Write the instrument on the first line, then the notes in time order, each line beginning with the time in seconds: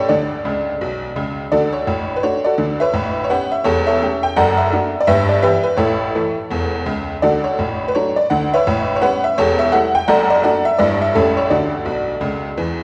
honky-tonk piano
Already playing: A2 A3 C#4 G4 A4 C#5
0.09 D2 D3 D5
0.45 C#2 C#3
0.81 B1 B2
1.16 C#2 C#3
1.52 D2 D3 F#4 A4 D5
1.73 C#5
1.87 A1 A2
2.16 B4
2.23 A3 D4 F#4 C#5
2.44 F#4 A4 D5
2.58 D2 D3
2.80 B4 C#5 E5
2.93 A1 A2
3.24 C#5
3.30 B3 C#4 G4 B4 C#5 F#5
3.52 E5
3.64 E1 E2 G4 A4 C#5
3.87 A4 C#5 E5
4.02 A3 C#4 G4
4.23 G5
4.36 F#1 F#2 A4 D5 F#5
4.57 E5
4.72 A3 D4 F#4
5.00 D5
5.07 G1 G2 G4 B4 E5
5.29 D5
5.43 E3 B3 E4 G4 B4 E5
5.63 B4
5.77 A1 A2 E4 A4 C#5
6.15 E3 A3 E4
6.51 E1 E2
6.86 C#2 C#3
7.22 D2 D3 F#4 A4 D5
7.44 C#5
7.59 A1 A2
7.88 B4
7.95 F#3 A3 D4 C#5
8.16 D5
8.30 D2 D3 F#5
8.54 B4 C#5 E5
8.67 A1 A2
8.96 C#5
9.02 G3 B3 C#4 B4 C#5 F#5
9.24 E5
9.38 E1 E2 G4 A4 C#5
9.59 E5
9.72 G3 A3 E4 F#5
9.95 G5
10.08 F#1 F#2 A4 D5 F#5
10.30 D5
10.44 F#3 A3 D4 A4 D5 F#5
10.65 E5
10.79 G1 G2 G3 B3 E4 D5
11.02 E5
11.15 A1 A2 G3 A3 C#4 E4 A4
11.37 C#5
11.50 D2 D3 F#4 A4 D5
11.85 B1 B2
12.21 C#2 C#3
12.57 E2 E3